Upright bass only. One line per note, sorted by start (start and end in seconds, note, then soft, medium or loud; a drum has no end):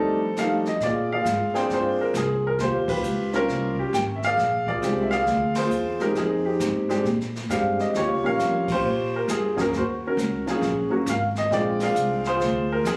0.00 0.77 F2 medium
0.80 1.24 A#2 medium
1.25 1.53 G#2 medium
1.54 muted upright bass stroke soft
1.69 2.13 G2 medium
2.14 2.58 C2 medium
2.59 3.03 D#2 medium
3.03 3.47 C#2 medium
3.48 3.76 C2 medium
3.77 muted upright bass stroke soft
3.93 4.37 G#1 medium
4.37 4.81 A#1 medium
4.82 5.25 C2 medium
5.26 5.69 D2 medium
5.70 6.14 E2 medium
6.15 6.59 F2 medium
6.60 7.04 G#2 medium
7.04 7.48 A#2 medium
7.49 7.77 G2 medium
7.79 muted upright bass stroke soft
7.94 8.09 D#2 medium
8.09 8.22 C#2 soft
8.23 8.38 A#1 medium
8.39 8.82 F2 medium
8.83 9.27 A#2 medium
9.28 9.71 G2 medium
9.72 10.16 D#2 medium
10.17 10.44 C#2 medium
10.46 muted upright bass stroke soft
10.61 10.89 A#1 medium
10.90 muted upright bass stroke soft
11.06 11.50 G#1 medium
11.51 11.94 A#1 medium
11.95 12.39 C2 medium
12.40 12.83 D2 medium
12.85 12.97 F2 medium